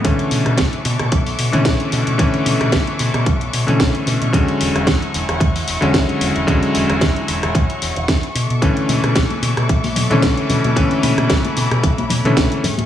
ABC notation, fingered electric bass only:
X:1
M:4/4
L:1/16
Q:"Swing 16ths" 1/4=112
K:Bdor
V:1 name="Fingered electric bass" clef=bass
B,,, z B,, B,, B,,, z B,, B,, B,,, z B,, B,, B,,, z B,, B,, | B,,, z B,, B,, B,,, z B,, B,, B,,, z B,, B,, B,,, z B,, B,, | E,, z E,,, E,,, E,, z E,,, E,,, E,, z E,,, E,,, E,, z E,,, E,,, | E,, z E,,, E,,, E,, z E,,, E,,, E,, z E,,, E,,, E,, z B,, B,, |
B,,, z B,, B,, B,,, z B,, B,, B,,, z B,, B,, B,,, z B,, B,, | B,,, z B,, B,, B,,, z B,, B,, B,,, z B,, B,, B,,, z A,, A,, |]